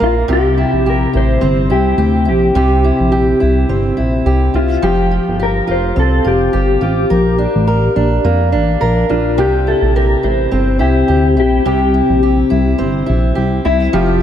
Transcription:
Already playing: F4 A#4
0.00 A#1 A#3 F4
0.28 C2 C3 G4
0.33 G4
0.58 E4
0.73 A#1
0.86 G4 A#4
1.13 A1 E4 C5
1.41 G1 C4
1.70 C2 E4 G4
1.98 D2 G4
2.25 A#1 E4 G4
2.55 C2 C3 G4
2.84 E4
3.00 A#1
3.12 G4
3.40 C2 E4
3.69 G1 C4
3.97 A#1 E4
4.26 C2 G4
4.54 C2 E4 F4
4.82 F1 F3 G4
5.11 F4
5.28 G1
5.40 G4 A#4
5.67 F1 F4 C5
5.96 C2 C4 A4
6.24 F1 F4 G4
6.53 G1 G4
6.81 A1 F4 G4
7.10 A#1 A#4
7.38 D4
7.56 A1
7.67 A#4
7.96 A#1 D4
8.25 F2 A#3
8.52 A1 D4
8.81 A#1 A#4
9.09 A#1 D4 F4
9.38 C2 C3 G4
9.67 E4 A4
9.82 A#1
9.96 G4 A#4
10.23 A1 E4 C5
10.52 G1 C4
10.79 C2 E4 G4
11.08 D2 G4
11.37 A#1 E4 G4
11.65 C2 C3 G4
11.94 E4
12.10 A#1
12.23 G4
12.50 C2 E4
12.78 G1 C4
13.06 A#1 E4
13.35 C2 G4
13.65 C2 E4
13.93 F1 F3 F4 G4

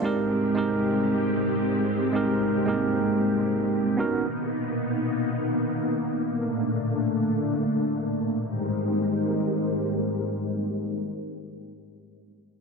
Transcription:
Already playing: D5
0.02 G#3 C4 D#4 G4 A#4
0.54 G#3 C4 D#4 G4 A#4
2.13 G#3 C4 D#4 G4 A#4
2.66 G#3 A#3 D#4 G4 A#4
2.73 C4
3.97 A#3 B3 C#4 D#4 F#4 A#4
6.35 A3 D4
8.46 G#3 D#4 G4 A#4 C5

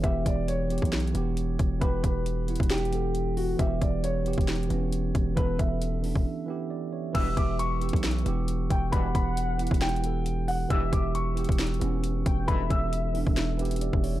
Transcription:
0.02 E1 E3 B3 E5, kick, closed hi-hat
0.06 G4
0.26 E1 D5, kick, closed hi-hat
0.48 C#5, closed hi-hat
0.68 E3 B3, closed hi-hat
0.72 G4
0.78 closed hi-hat
0.82 B1, kick, closed hi-hat
0.93 snare, closed hi-hat
1.00 closed hi-hat
1.07 closed hi-hat
1.13 E1 E3 B3, closed hi-hat
1.17 G4
1.37 closed hi-hat
1.59 E1, kick, closed hi-hat
1.80 E1 E3 B3 B4, kick, closed hi-hat
1.84 G4
2.04 E1 B4, kick, closed hi-hat
2.26 closed hi-hat
2.46 E3 B3, closed hi-hat
2.50 E4
2.56 closed hi-hat
2.60 E1, kick, closed hi-hat
2.70 G4, snare, closed hi-hat
2.78 closed hi-hat
2.85 closed hi-hat
2.91 E3 B3, closed hi-hat
2.95 A4
3.15 closed hi-hat
3.37 F#4, open hi-hat
3.57 E1 E3 B3 E5, kick, closed hi-hat
3.61 G4
3.81 E1 D5, kick, closed hi-hat
4.04 C#5, closed hi-hat
4.24 E3 B3 G4, closed hi-hat
4.33 closed hi-hat
4.38 E1, kick, closed hi-hat
4.48 snare, closed hi-hat
4.56 closed hi-hat
4.63 closed hi-hat
4.68 E1 E3 B3, closed hi-hat
4.72 C#4
4.92 closed hi-hat
5.15 E1, kick, closed hi-hat
5.35 E1 E3 B3 A4 B4, kick, closed hi-hat
5.59 E1 E5, kick, closed hi-hat
5.82 closed hi-hat
6.02 E3 B3, open hi-hat
6.06 D4
6.16 E1, kick
6.46 E3 B3 E5
6.50 G4
6.70 D5
6.93 C#5
7.13 E1 G2 B2 E3 B3 E5 E6, kick, closed hi-hat, crash
7.17 G4
7.37 E1 D6, kick, closed hi-hat
7.59 C#6, closed hi-hat
7.79 E3 B3, closed hi-hat
7.83 G4
7.89 closed hi-hat
7.93 B1, kick, closed hi-hat
8.04 snare, closed hi-hat
8.11 closed hi-hat
8.19 closed hi-hat
8.24 E1 E3 B3 G4, closed hi-hat
8.48 closed hi-hat
8.70 E1 G5, kick, closed hi-hat
8.91 E1 G2 B2 E3 B3 F#5 B5, kick, closed hi-hat
8.95 G4
9.15 E1 B5, kick, closed hi-hat
9.37 closed hi-hat
9.57 E3 B3, closed hi-hat
9.61 E4
9.67 closed hi-hat
9.71 E1, kick, closed hi-hat
9.81 G5, snare, closed hi-hat
9.89 closed hi-hat
9.96 closed hi-hat
10.02 E3 B3 A4, closed hi-hat
10.26 closed hi-hat
10.48 F#5, open hi-hat
10.68 E1 G2 B2 E3 B3 E5 E6, kick, closed hi-hat
10.72 G4
10.93 E1 D6, kick, closed hi-hat
11.15 C#6, closed hi-hat
11.35 E3 B3 G4, closed hi-hat
11.44 closed hi-hat
11.49 E1, kick, closed hi-hat
11.59 snare, closed hi-hat
11.67 closed hi-hat
11.74 closed hi-hat
11.79 E1 E3 B3 C#4, closed hi-hat
12.04 closed hi-hat
12.26 E1 G5, kick, closed hi-hat
12.46 E1 G2 B2 E3 B3 A4 E5 B5, kick, closed hi-hat
12.70 E1 E6, kick, closed hi-hat
12.93 closed hi-hat
13.13 E3 B3, open hi-hat
13.17 D4
13.27 E1, kick
13.37 snare, closed hi-hat
13.57 E3 B3 G4 E5, closed hi-hat
13.65 closed hi-hat
13.71 closed hi-hat
13.76 closed hi-hat
13.81 D5, closed hi-hat
13.93 E1, kick
14.04 C#5, open hi-hat
14.16 G1

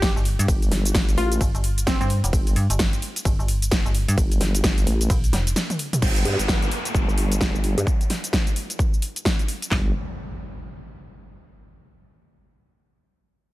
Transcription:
Already playing: G1 G4
0.02 kick, snare, ride, shaker
0.16 G1, shaker
0.25 open hi-hat
0.39 G2, closed hi-hat, shaker
0.48 G1, kick, ride, shaker
0.62 closed hi-hat, shaker
0.71 G1, snare, open hi-hat
0.85 closed hi-hat, shaker
0.95 G1, kick, snare, ride, shaker
1.09 closed hi-hat, shaker
1.18 A1 F4, open hi-hat
1.32 closed hi-hat, shaker
1.41 G1, kick, ride, shaker
1.55 G1, closed hi-hat, shaker
1.64 open hi-hat
1.78 closed hi-hat, shaker
1.87 C4, kick, snare, ride, shaker
2.01 G2 C4, closed hi-hat, shaker
2.10 open hi-hat
2.24 F1, closed hi-hat, shaker
2.33 G1, kick, ride, shaker
2.47 closed hi-hat, shaker
2.56 G2, open hi-hat
2.70 G1, closed hi-hat, shaker
2.79 kick, snare, ride, shaker
2.93 closed hi-hat, shaker
3.02 open hi-hat
3.16 closed hi-hat, shaker
3.25 G1, kick, ride, shaker
3.39 G1, shaker
3.48 open hi-hat
3.62 closed hi-hat, shaker
3.71 kick, snare, ride, shaker
3.85 G1, shaker
3.95 open hi-hat
4.08 G2, closed hi-hat, shaker
4.18 G1, kick, ride, shaker
4.32 closed hi-hat, shaker
4.41 G1, snare, open hi-hat
4.55 closed hi-hat, shaker
4.64 G1, kick, snare, ride, shaker
4.78 closed hi-hat, shaker
4.87 A1, open hi-hat
5.01 closed hi-hat, shaker
5.10 A#1, kick, ride, shaker
5.24 closed hi-hat, shaker
5.33 F1, snare, open hi-hat
5.47 closed hi-hat, shaker
5.56 snare, ride, shaker
5.70 closed hi-hat, mid tom, shaker
5.79 open hi-hat
5.93 closed hi-hat, mid tom, shaker
6.02 G1, kick, crash, downlifter, shaker
6.16 closed hi-hat, shaker
6.25 G2, open hi-hat
6.39 G1, closed hi-hat, shaker
6.48 kick, snare, shaker
6.62 closed hi-hat, shaker
6.71 open hi-hat
6.85 closed hi-hat, shaker
6.95 G1, kick, shaker
7.08 G1, shaker
7.18 open hi-hat
7.32 closed hi-hat, shaker
7.41 kick, snare, shaker
7.55 G1, shaker
7.64 open hi-hat
7.78 G2, closed hi-hat, shaker
7.87 kick, shaker
8.01 closed hi-hat, shaker
8.10 snare, open hi-hat
8.24 closed hi-hat, shaker
8.33 kick, snare, shaker
8.47 closed hi-hat, shaker
8.56 open hi-hat
8.70 closed hi-hat, shaker
8.79 kick, shaker
8.94 shaker
9.02 open hi-hat
9.16 closed hi-hat, shaker
9.25 kick, snare, shaker
9.39 closed hi-hat, shaker
9.48 open hi-hat
9.62 closed hi-hat, shaker
9.71 G1, kick, snare, clap, impact

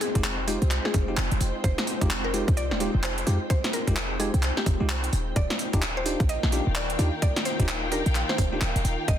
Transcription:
Already playing: G#3 C4 D#4 F4 C5 G5
0.01 G#4, open hi-hat
0.15 F1 G#3 D#4 F4 G4, kick, closed hi-hat
0.24 clap, closed hi-hat
0.47 G#3 D#4 F4 G4, open hi-hat
0.62 C2, closed hi-hat
0.71 clap, closed hi-hat
0.85 G#4, snare
0.94 F1, kick, open hi-hat
1.08 G#3 D#4 F4 G4
1.17 F1, clap, open hi-hat
1.31 F1, closed hi-hat
1.41 F1, open hi-hat
1.64 F1 C5, kick, closed hi-hat
1.78 snare, closed hi-hat
1.87 open hi-hat
2.01 F1 G#3 D#4 F4 G4, kick, closed hi-hat
2.11 clap, closed hi-hat
2.24 A#4
2.34 G#3 D#4 F4 G4, open hi-hat
2.48 C2, kick, closed hi-hat
2.57 D5, closed hi-hat
2.71 D#1, snare
2.80 G#3 D#4 F4 G4, open hi-hat
2.94 F1
3.04 C5, clap, closed hi-hat
3.18 closed hi-hat
3.27 F2 G#3 D#4 F4 G4, open hi-hat
3.50 C5, kick, closed hi-hat
3.64 snare, closed hi-hat
3.73 A#4, open hi-hat
3.87 F1 G#3 D#4 F4 G4, kick, closed hi-hat
3.97 clap, closed hi-hat
4.20 G#3 D#4 F4 G4 G#4, open hi-hat
4.34 C2, closed hi-hat
4.43 clap, closed hi-hat
4.57 G4, snare
4.66 F1, kick, open hi-hat
4.80 C2 G#3 D#4 F4 G4
4.90 clap, open hi-hat
5.04 closed hi-hat
5.13 D#1, open hi-hat
5.36 D#1 D#3 A#3 D#4 F4 D5, kick, closed hi-hat
5.50 A#4 F5, snare, closed hi-hat
5.59 open hi-hat
5.73 D#1 D4 D#4 F4 G4, kick, closed hi-hat
5.82 clap, closed hi-hat
5.96 C5 G5
6.06 D4 D#4 F4 G4, open hi-hat
6.20 A#1, kick, closed hi-hat
6.29 D#5, closed hi-hat
6.43 A#1, snare
6.52 D4 D#4 F4 G4, open hi-hat
6.67 D#1
6.76 D5, clap, closed hi-hat
6.90 closed hi-hat
6.99 D#2 D4 D#4 F4 G4, open hi-hat
7.22 D5, kick, closed hi-hat
7.36 snare, closed hi-hat
7.45 C5, open hi-hat
7.60 D#1 D4 D#4 F4 G4, kick, closed hi-hat
7.69 clap, closed hi-hat
7.92 D4 D#4 F4 G4 A#4, open hi-hat
8.06 A#1, closed hi-hat
8.15 clap, closed hi-hat
8.29 C5, snare
8.38 D#1, kick, open hi-hat
8.53 D4 D#4 F4 G4
8.62 D#1, clap, open hi-hat
8.76 D#1, closed hi-hat
8.85 D#1, open hi-hat
9.08 D#1 D#5, kick, closed hi-hat

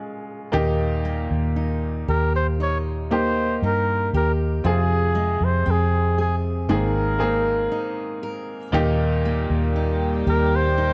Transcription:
Already playing: G#3 C#4 F4
0.52 D#2 A#2 D#3 A#3 D#4 G4
1.05 A#3
1.31 D#2
1.56 D#4
2.08 D#2 G4 A#4
2.36 C5
2.60 D#4 C#5
3.11 A#3 D#4 G4 C5
3.62 G2 D#4 A#4
4.13 D#2 G4 A#4
4.64 F2 C3 C4 F4 G#4
5.15 G#3
5.41 F2 C5
5.66 F2 C4
5.71 G#4
6.18 G#4
6.69 G#1 G#2 D#3 G#3 A#3 C4 G#4
6.73 A#4
7.19 A#3 C4 G#4
7.72 D#4
8.23 A#4
8.72 D#2 A#2 D#3 G3 A#3 D#4 G4
9.25 A#3
9.50 D#2
9.76 D#4
10.27 D#2 G4 A#4
10.56 C5
10.78 D#4

